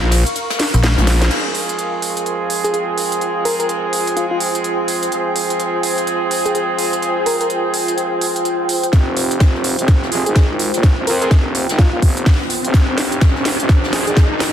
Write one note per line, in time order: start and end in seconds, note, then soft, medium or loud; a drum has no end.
0.00 0.24 A#1 loud
0.00 2.53 A#4 medium
0.00 2.76 F5 medium
0.00 1.31 C#6 medium
0.11 snare loud
0.11 closed hi-hat medium
0.11 open hi-hat loud
0.11 ride medium
0.26 closed hi-hat medium
0.35 closed hi-hat medium
0.50 snare loud
0.50 closed hi-hat medium
0.59 snare soft
0.59 snare medium
0.59 open hi-hat loud
0.59 ride medium
0.74 0.95 A#1 loud
0.74 closed hi-hat medium
0.83 snare loud
0.83 closed hi-hat medium
0.83 high tom medium
0.98 1.29 A#1 loud
0.98 snare loud
0.98 closed hi-hat medium
0.98 high tom medium
1.07 snare loud
1.07 snare medium
1.07 closed hi-hat medium
1.07 open hi-hat loud
1.07 ride medium
1.21 snare loud
1.21 snare medium
1.21 closed hi-hat medium
1.31 5.10 F3 medium
1.31 5.10 G#3 medium
1.31 5.10 C4 medium
1.31 14.53 F4 medium
1.31 5.10 G#4 medium
1.31 closed hi-hat soft
1.31 crash medium
1.55 open hi-hat loud
1.62 14.53 C5 medium
1.69 closed hi-hat medium
1.74 14.53 G5 medium
1.79 closed hi-hat medium
2.02 open hi-hat loud
2.17 closed hi-hat medium
2.26 closed hi-hat medium
2.50 open hi-hat medium
2.64 2.70 G#4 medium
2.64 closed hi-hat medium
2.74 2.83 G#4 medium
2.74 closed hi-hat medium
2.98 open hi-hat medium
3.12 closed hi-hat medium
3.21 closed hi-hat soft
3.45 3.54 A#4 medium
3.45 open hi-hat loud
3.60 3.66 A#4 medium
3.60 closed hi-hat medium
3.69 closed hi-hat soft
3.93 open hi-hat loud
4.07 closed hi-hat medium
4.17 4.26 F4 medium
4.17 closed hi-hat medium
4.31 4.37 F4 medium
4.40 open hi-hat loud
4.55 closed hi-hat medium
4.64 closed hi-hat medium
4.88 open hi-hat loud
5.03 closed hi-hat medium
5.12 8.91 F3 medium
5.12 8.91 G#3 medium
5.12 8.91 C4 medium
5.12 8.91 G#4 medium
5.12 closed hi-hat soft
5.36 open hi-hat loud
5.50 closed hi-hat medium
5.60 closed hi-hat soft
5.83 open hi-hat loud
5.98 closed hi-hat medium
6.07 closed hi-hat soft
6.31 open hi-hat loud
6.46 6.51 G#4 medium
6.46 closed hi-hat medium
6.55 6.64 G#4 medium
6.55 closed hi-hat soft
6.79 open hi-hat loud
6.93 closed hi-hat medium
7.02 closed hi-hat soft
7.26 7.36 A#4 medium
7.26 open hi-hat loud
7.41 7.47 A#4 medium
7.41 closed hi-hat medium
7.50 closed hi-hat soft
7.74 open hi-hat loud
7.88 closed hi-hat medium
7.98 closed hi-hat soft
8.21 open hi-hat loud
8.36 closed hi-hat medium
8.45 closed hi-hat soft
8.69 open hi-hat loud
8.84 closed hi-hat medium
8.93 9.39 F1 medium
8.93 kick loud
8.93 snare soft
8.93 closed hi-hat soft
8.93 closed hi-hat medium
8.93 riser medium
9.17 closed hi-hat medium
9.17 open hi-hat loud
9.31 closed hi-hat medium
9.40 9.77 F1 medium
9.40 kick loud
9.40 snare soft
9.40 snare loud
9.40 closed hi-hat medium
9.55 snare soft
9.64 closed hi-hat medium
9.64 open hi-hat loud
9.79 10.10 F1 loud
9.79 closed hi-hat medium
9.88 kick loud
9.88 snare medium
9.88 closed hi-hat medium
10.03 snare soft
10.12 10.24 F1 medium
10.12 10.28 F3 medium
10.12 10.28 G#3 medium
10.12 10.28 C4 medium
10.12 10.28 G#4 medium
10.12 closed hi-hat medium
10.12 open hi-hat loud
10.26 10.72 G#1 medium
10.26 10.32 G#4 medium
10.26 closed hi-hat medium
10.36 kick loud
10.36 snare medium
10.36 snare loud
10.36 closed hi-hat medium
10.59 closed hi-hat medium
10.59 open hi-hat loud
10.74 10.96 D#1 medium
10.74 snare soft
10.74 closed hi-hat medium
10.83 kick loud
10.83 snare medium
10.83 closed hi-hat medium
10.98 11.06 F1 medium
11.07 11.29 F2 loud
11.07 11.16 A#4 medium
11.07 closed hi-hat medium
11.07 open hi-hat loud
11.22 11.33 F3 medium
11.22 11.33 G#3 loud
11.22 11.33 C4 medium
11.22 11.33 G#4 loud
11.22 11.28 A#4 medium
11.22 closed hi-hat medium
11.31 11.67 F1 loud
11.31 kick loud
11.31 snare medium
11.31 snare loud
11.31 closed hi-hat medium
11.55 closed hi-hat medium
11.55 open hi-hat loud
11.69 11.91 G#1 medium
11.69 snare soft
11.69 closed hi-hat medium
11.79 11.88 F4 medium
11.79 kick loud
11.79 snare medium
11.79 closed hi-hat medium
11.93 12.01 D#1 loud
11.93 11.99 F4 medium
12.02 12.38 F1 loud
12.02 kick medium
12.02 closed hi-hat medium
12.02 open hi-hat loud
12.17 closed hi-hat medium
12.26 kick loud
12.26 snare medium
12.26 snare loud
12.26 closed hi-hat medium
12.26 open hi-hat medium
12.50 closed hi-hat medium
12.50 open hi-hat loud
12.65 12.72 F1 medium
12.65 closed hi-hat medium
12.74 13.20 F1 medium
12.74 kick loud
12.74 snare medium
12.74 closed hi-hat soft
12.74 closed hi-hat loud
12.97 snare medium
12.97 closed hi-hat medium
12.97 open hi-hat loud
13.12 closed hi-hat medium
13.21 13.57 F1 medium
13.21 kick loud
13.21 snare medium
13.21 snare loud
13.21 closed hi-hat medium
13.21 closed hi-hat soft
13.36 snare soft
13.45 snare medium
13.45 closed hi-hat medium
13.45 open hi-hat loud
13.60 13.91 F1 loud
13.60 closed hi-hat medium
13.69 kick loud
13.69 snare medium
13.69 closed hi-hat medium
13.84 snare soft
13.93 14.05 F1 medium
13.93 14.08 F3 medium
13.93 14.08 G#3 medium
13.93 14.08 C4 medium
13.93 14.08 G#4 medium
13.93 snare medium
13.93 closed hi-hat medium
13.93 open hi-hat loud
14.07 14.53 G#1 medium
14.07 14.13 G#4 medium
14.07 closed hi-hat medium
14.17 14.26 G#4 medium
14.17 kick loud
14.17 snare medium
14.17 snare loud
14.17 closed hi-hat medium
14.40 snare medium
14.40 snare loud
14.40 open hi-hat loud
14.40 open hi-hat medium